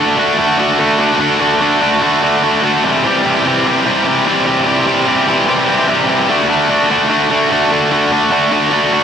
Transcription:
0.00 0.17 D3 medium
0.00 0.18 A3 medium
0.00 0.19 D4 medium
0.00 0.19 F#4 loud
0.18 0.36 D3 medium
0.18 0.38 A3 loud
0.18 0.38 D4 medium
0.18 0.38 F#4 loud
0.38 0.57 D3 medium
0.38 0.59 A3 medium
0.38 0.58 D4 medium
0.38 0.59 F#4 medium
0.58 0.78 D3 medium
0.58 0.79 A3 loud
0.58 0.79 D4 medium
0.58 0.79 F#4 loud
0.79 0.98 D3 medium
0.79 0.99 A3 medium
0.79 0.99 D4 medium
0.79 0.99 F#4 medium
0.99 1.18 D3 medium
0.99 1.20 A3 medium
0.99 1.20 D4 medium
0.99 1.20 F#4 loud
1.19 1.38 D3 medium
1.19 1.40 A3 medium
1.19 1.39 D4 medium
1.19 1.40 F#4 loud
1.39 1.60 D3 medium
1.39 1.61 A3 loud
1.39 1.61 D4 medium
1.39 1.62 F#4 loud
1.61 1.80 D3 medium
1.61 1.81 A3 medium
1.61 1.81 D4 loud
1.61 1.81 F#4 medium
1.81 2.00 D3 medium
1.81 2.01 A3 medium
1.81 2.01 D4 loud
1.81 2.02 F#4 loud
2.01 2.20 D3 medium
2.01 2.22 A3 medium
2.01 2.22 D4 medium
2.01 2.23 F#4 medium
2.22 2.41 D3 loud
2.22 2.42 A3 medium
2.22 2.42 D4 loud
2.22 2.43 F#4 loud
2.42 2.61 D3 medium
2.42 2.63 A3 medium
2.42 2.63 D4 medium
2.42 2.63 F#4 medium
2.63 2.82 D3 medium
2.63 2.84 A3 medium
2.63 2.83 D4 loud
2.63 2.83 F#4 loud
2.83 3.03 C3 medium
2.83 3.04 E3 medium
2.83 3.05 G3 medium
2.83 3.05 C4 loud
2.83 3.06 G4 medium
3.03 3.23 C3 loud
3.03 3.24 E3 loud
3.03 3.25 G3 loud
3.03 3.25 C4 medium
3.03 3.25 G4 loud
3.24 3.45 C3 medium
3.24 3.46 E3 loud
3.24 3.46 G3 medium
3.24 3.47 C4 medium
3.24 3.47 G4 loud
3.45 3.65 C3 medium
3.45 3.65 E3 medium
3.45 3.66 G3 medium
3.45 3.66 C4 loud
3.45 3.67 G4 medium
3.65 3.84 C3 medium
3.65 3.85 E3 medium
3.65 3.85 G3 medium
3.65 3.86 C4 medium
3.65 3.86 G4 loud
3.85 4.04 C3 medium
3.85 4.05 E3 loud
3.85 4.06 G3 loud
3.85 4.07 C4 loud
3.85 4.07 G4 loud
4.06 4.25 C3 medium
4.06 4.26 E3 medium
4.06 4.26 G3 medium
4.06 4.27 C4 medium
4.06 4.27 G4 medium
4.26 4.45 C3 medium
4.26 4.45 E3 medium
4.26 4.46 G3 loud
4.26 4.46 C4 loud
4.26 4.47 G4 loud
4.46 4.64 C3 medium
4.46 4.65 E3 medium
4.46 4.66 G3 medium
4.46 4.66 C4 medium
4.46 4.66 G4 medium
4.65 4.85 C3 loud
4.65 4.85 E3 medium
4.65 4.86 G3 medium
4.65 4.87 C4 loud
4.65 4.87 G4 loud
4.86 5.06 C3 medium
4.86 5.06 E3 medium
4.86 5.07 G3 medium
4.86 5.07 C4 loud
4.86 5.08 G4 loud
5.07 5.26 C3 medium
5.07 5.26 E3 medium
5.07 5.27 G3 loud
5.07 5.28 C4 loud
5.07 5.28 G4 loud
5.27 5.46 C3 medium
5.27 5.47 E3 medium
5.27 5.47 G3 medium
5.27 5.48 C4 medium
5.27 5.48 G4 medium
5.47 5.66 C3 medium
5.47 5.67 E3 loud
5.47 5.68 G3 loud
5.47 5.68 C4 medium
5.47 5.69 G4 loud
5.67 5.87 C3 medium
5.67 5.87 E3 medium
5.67 5.88 G3 medium
5.67 5.88 C4 medium
5.67 5.89 G4 medium
5.88 6.07 C3 medium
5.88 6.08 E3 medium
5.88 6.08 G3 medium
5.88 6.09 C4 medium
5.88 6.09 G4 medium
6.08 6.27 C3 medium
6.08 6.28 E3 medium
6.08 6.28 G3 medium
6.08 6.28 C4 medium
6.08 6.29 G4 medium
6.29 6.48 D3 medium
6.29 6.49 A3 loud
6.29 6.50 D4 medium
6.29 6.50 F#4 loud
6.49 6.69 D3 medium
6.49 6.69 A3 medium
6.49 6.70 D4 medium
6.49 6.70 F#4 loud
6.69 6.88 D3 medium
6.69 6.90 A3 loud
6.69 6.90 D4 loud
6.69 6.91 F#4 loud
6.90 7.08 D3 medium
6.90 7.10 A3 medium
6.90 7.10 D4 medium
6.90 7.10 F#4 loud
7.09 7.29 D3 medium
7.09 7.31 A3 medium
7.09 7.30 D4 medium
7.09 7.31 F#4 medium
7.30 7.49 D3 medium
7.30 7.51 A3 medium
7.30 7.51 D4 medium
7.30 7.52 F#4 medium
7.51 7.70 D3 medium
7.51 7.72 A3 loud
7.51 7.72 D4 medium
7.51 7.72 F#4 loud
7.71 7.90 D3 medium
7.71 7.91 A3 medium
7.71 7.91 D4 medium
7.71 7.92 F#4 medium
7.91 8.11 D3 medium
7.91 8.12 A3 medium
7.91 8.12 D4 loud
7.91 8.13 F#4 medium
8.12 8.30 D3 medium
8.12 8.31 A3 loud
8.12 8.31 D4 loud
8.12 8.32 F#4 loud
8.31 8.50 D3 loud
8.31 8.52 A3 medium
8.31 8.52 D4 loud
8.31 8.52 F#4 loud
8.51 8.71 D3 medium
8.51 8.72 A3 medium
8.51 8.72 D4 loud
8.51 8.72 F#4 loud
8.72 8.91 D3 medium
8.72 8.92 A3 medium
8.72 8.92 D4 loud
8.72 8.93 F#4 loud
8.92 9.04 D3 medium
8.92 9.04 A3 medium
8.92 9.04 D4 medium
8.92 9.04 F#4 medium

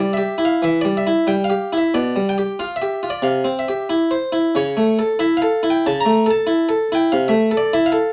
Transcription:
0.00 0.20 G3 soft
0.00 0.13 D5 medium
0.13 0.41 G4 soft
0.13 0.46 E5 medium
0.38 0.62 E4 medium
0.45 0.62 F5 medium
0.62 0.85 E3 medium
0.62 0.79 E5 loud
0.81 1.07 G3 soft
0.81 0.96 D5 medium
0.97 1.29 E5 medium
1.07 1.29 E4 soft
1.27 1.51 G3 medium
1.27 1.44 G5 loud
1.44 1.73 F5 medium
1.50 1.73 G4 soft
1.73 1.95 E4 medium
1.78 1.94 E5 medium
1.94 2.16 B2 medium
1.94 2.28 D5 loud
2.16 2.40 G3 medium
2.29 2.57 G5 loud
2.38 2.62 G4 medium
2.59 2.83 F4 medium
2.59 2.77 F5 loud
2.76 3.09 E5 medium
2.82 3.05 G4 soft
3.03 3.25 F4 soft
3.10 3.26 D5 medium
3.22 3.45 C3 medium
3.22 3.52 F5 loud
3.44 3.68 C4 soft
3.59 3.86 E5 medium
3.68 3.91 G4 soft
3.90 4.12 E4 medium
4.11 4.34 C5 medium
4.32 4.54 E4 medium
4.55 4.76 C#3 medium
4.55 5.11 C#5 loud
4.77 4.99 A3 medium
4.99 5.21 A4 medium
5.19 5.41 E4 medium
5.19 5.35 E5 loud
5.37 5.63 F5 medium
5.42 5.63 A4 medium
5.63 5.84 E4 medium
5.70 5.84 G5 medium
5.86 6.05 C#3 medium
5.86 6.00 A5 loud
6.01 6.31 A#5 medium
6.06 6.26 A3 medium
6.26 6.47 A4 medium
6.31 6.83 A5 loud
6.47 6.68 E4 medium
6.69 6.89 A4 medium
6.92 7.11 E4 medium
6.92 7.09 G5 medium
7.12 7.31 C3 medium
7.12 7.26 F5 loud
7.28 7.51 A3 medium
7.28 7.58 E5 medium
7.51 7.73 A4 medium
7.57 7.72 D5 medium
7.73 7.95 E4 medium
7.73 7.88 E5 loud
7.86 8.13 F5 medium
7.92 8.13 A4 soft

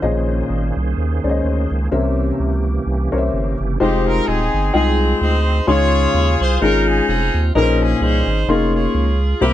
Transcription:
0.00 0.43 A#1 loud
0.00 0.72 A#2 medium
0.00 1.88 D#3 medium
0.00 3.76 A#3 medium
0.00 0.60 C#4 medium
0.00 1.90 C#4 medium
0.00 0.60 G#4 medium
0.00 1.90 G#4 medium
0.00 1.88 C5 medium
0.00 0.60 C5 medium
0.00 0.60 D#5 medium
0.50 0.72 G#1 medium
0.76 0.94 C2 medium
0.97 1.20 D#2 medium
1.24 1.42 C#2 medium
1.24 1.66 C#4 medium
1.24 1.66 G#4 medium
1.24 1.66 C5 medium
1.24 1.29 D5 medium
1.29 1.68 D#5 medium
1.44 1.67 D2 medium
1.71 1.89 C#2 medium
1.91 2.32 C2 medium
1.91 2.61 C3 medium
1.91 3.79 C3 soft
1.91 3.78 E3 medium
1.91 2.49 C#4 medium
1.91 3.79 C#4 soft
1.91 3.79 G4 medium
1.91 2.49 A#4 medium
1.91 2.49 C5 medium
1.91 2.49 E5 medium
2.39 2.79 C#2 medium
2.86 3.09 C2 medium
3.12 3.30 C2 medium
3.12 3.54 C#4 medium
3.12 3.54 A#4 medium
3.12 3.54 C5 medium
3.12 3.17 C#5 medium
3.18 3.57 E5 medium
3.33 3.56 G1 medium
3.60 3.77 F#1 medium
3.80 4.20 F1 loud
3.80 4.37 G#3 medium
3.80 4.27 C4 medium
3.80 4.37 D#4 medium
3.80 4.26 D#4 medium
3.80 4.37 F4 medium
3.80 4.04 G4 medium
3.80 4.37 G4 medium
3.80 4.37 C5 medium
4.06 4.27 A#4 loud
4.27 4.50 D#1 medium
4.27 4.73 C4 medium
4.27 4.73 D#4 medium
4.27 4.72 G#4 medium
4.54 4.71 G1 medium
4.73 5.14 C2 loud
4.73 5.31 G#3 medium
4.73 5.64 C4 medium
4.73 5.31 D#4 medium
4.73 5.21 D#4 medium
4.73 5.31 F4 medium
4.73 5.17 G#4 medium
4.73 5.31 D#5 medium
4.73 5.31 G5 medium
5.21 5.61 D2 medium
5.21 5.65 D#4 medium
5.21 5.65 G#4 medium
5.21 5.68 C5 loud
5.67 6.07 C#2 loud
5.67 6.36 C#3 medium
5.67 6.24 G#3 medium
5.67 6.24 C#4 medium
5.67 6.25 D#4 medium
5.67 6.24 F4 medium
5.67 6.57 F4 medium
5.67 6.57 G#4 medium
5.67 6.37 C#5 loud
5.67 6.24 C6 medium
6.14 6.36 D#2 loud
6.41 6.58 C2 medium
6.41 6.61 C5 loud
6.62 7.01 G#1 loud
6.62 7.18 G#3 medium
6.62 7.18 C#4 medium
6.62 7.18 D#4 medium
6.62 7.51 D#4 medium
6.62 7.18 F4 medium
6.62 7.08 F4 medium
6.62 7.18 G#4 medium
6.62 6.86 A#4 loud
6.87 7.08 G#4 medium
7.08 7.30 F1 loud
7.08 7.52 C4 medium
7.08 7.52 F4 medium
7.08 7.42 G#4 loud
7.34 7.52 D#2 loud
7.55 7.94 A#1 loud
7.55 8.24 A#2 medium
7.55 8.12 A#3 medium
7.55 8.12 C#4 medium
7.55 8.45 C#4 medium
7.55 8.12 D#4 medium
7.55 8.00 D#4 medium
7.55 8.12 G#4 medium
7.55 7.79 A#4 loud
7.55 7.61 B4 medium
7.61 8.14 C5 medium
7.81 8.01 G#4 loud
8.01 8.23 C2 loud
8.01 8.91 D#4 medium
8.01 8.48 G#4 medium
8.01 8.48 C5 loud
8.27 8.45 G#1 medium
8.47 8.87 F1 loud
8.47 9.05 A#3 medium
8.47 9.05 C#4 medium
8.47 9.05 D#4 medium
8.47 8.74 F4 medium
8.47 8.74 G#4 medium
8.47 9.05 G#4 medium
8.47 8.74 C#5 loud
8.47 9.05 C6 medium
8.75 9.38 F4 medium
8.75 9.38 G#4 medium
8.75 9.18 C#5 medium
8.94 9.34 C#2 loud
9.41 9.53 C2 loud
9.41 9.53 C3 medium
9.41 9.53 A#3 medium
9.41 9.53 C4 medium
9.41 9.53 E4 medium
9.41 9.53 G4 medium
9.41 9.53 A#4 loud
9.41 9.53 C5 medium

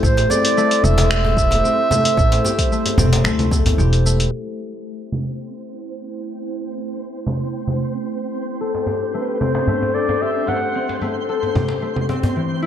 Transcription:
0.00 0.22 A1 medium
0.00 4.28 A3 medium
0.00 0.57 A3 medium
0.00 0.30 C4 loud
0.00 4.28 E4 medium
0.00 1.10 G4 medium
0.00 0.83 A4 medium
0.00 4.28 C5 medium
0.00 0.32 C5 loud
0.00 kick loud
0.04 shaker soft
0.17 closed hi-hat soft
0.17 djembe slap soft
0.17 shaker soft
0.30 1.63 C4 medium
0.30 0.85 D5 loud
0.30 djembe tone medium
0.30 shaker medium
0.45 closed hi-hat medium
0.45 shaker soft
0.57 1.37 A3 loud
0.57 shaker soft
0.71 closed hi-hat soft
0.71 shaker soft
0.84 1.58 E1 medium
0.84 2.17 A4 medium
0.84 3.78 E5 loud
0.84 low conga medium
0.84 shaker medium
0.98 closed hi-hat medium
0.98 djembe slap medium
0.98 shaker soft
1.11 2.45 G4 medium
1.11 finger snap medium
1.11 shaker soft
1.25 djembe tone medium
1.37 1.91 A3 medium
1.37 kick loud
1.37 shaker medium
1.51 closed hi-hat medium
1.51 djembe tone medium
1.51 shaker soft
1.64 2.98 C4 medium
1.64 shaker soft
1.91 2.71 A3 loud
1.91 djembe slap soft
1.91 djembe tone medium
1.91 low conga medium
1.91 shaker medium
2.05 closed hi-hat medium
2.05 shaker soft
2.17 2.36 A1 loud
2.17 3.52 A4 medium
2.17 kick loud
2.17 shaker soft
2.32 closed hi-hat soft
2.32 djembe slap medium
2.32 shaker soft
2.45 3.79 G4 medium
2.45 djembe tone medium
2.45 shaker medium
2.59 kick medium
2.59 closed hi-hat medium
2.59 shaker soft
2.72 3.25 A3 medium
2.72 shaker soft
2.86 closed hi-hat soft
2.86 djembe tone medium
2.86 shaker soft
2.98 3.17 E1 medium
2.98 5.99 C4 medium
2.98 low conga medium
2.98 djembe bass medium
2.98 shaker medium
3.13 closed hi-hat medium
3.13 djembe slap medium
3.13 shaker soft
3.24 3.77 D2 loud
3.24 4.05 A3 loud
3.24 finger snap medium
3.24 shaker soft
3.39 closed hi-hat soft
3.39 low conga medium
3.39 shaker soft
3.51 5.72 A4 medium
3.51 kick loud
3.51 djembe tone medium
3.51 shaker medium
3.66 closed hi-hat medium
3.66 djembe bass medium
3.66 shaker soft
3.78 4.26 E1 medium
3.78 6.14 G4 medium
3.78 shaker soft
3.93 closed hi-hat soft
3.93 shaker soft
4.06 7.39 A3 medium
4.06 shaker medium
4.20 closed hi-hat medium
4.20 shaker soft
4.32 12.66 A3 medium
4.32 12.66 C4 medium
4.32 8.56 E4 medium
4.32 12.66 C5 medium
5.12 low conga medium
7.27 low conga medium
7.68 low conga medium
8.60 12.66 D4 medium
8.60 9.94 A4 medium
8.74 djembe slap soft
8.86 10.21 G4 medium
8.86 djembe tone medium
9.14 9.68 A3 medium
9.14 9.42 B4 medium
9.40 10.75 C4 medium
9.40 9.96 C5 medium
9.40 low conga medium
9.55 djembe slap medium
9.67 10.48 A3 medium
9.67 djembe bass medium
9.82 djembe tone medium
9.94 11.29 A4 medium
9.94 10.23 D5 medium
10.09 djembe tone medium
10.22 11.55 G4 medium
10.22 10.50 E5 medium
10.47 11.01 A3 medium
10.47 11.02 F#5 medium
10.47 djembe slap soft
10.47 djembe tone medium
10.75 12.09 C4 medium
10.89 djembe slap soft
11.01 11.82 A3 medium
11.01 djembe tone medium
11.29 12.66 A4 medium
11.43 djembe tone soft
11.55 12.66 G4 medium
11.55 low conga medium
11.55 djembe bass medium
11.68 djembe slap medium
11.82 12.66 A3 medium
11.96 low conga medium
12.09 12.66 C4 loud
12.09 djembe tone medium
12.23 djembe bass medium
12.36 12.66 E3 medium
12.62 12.66 E4 medium

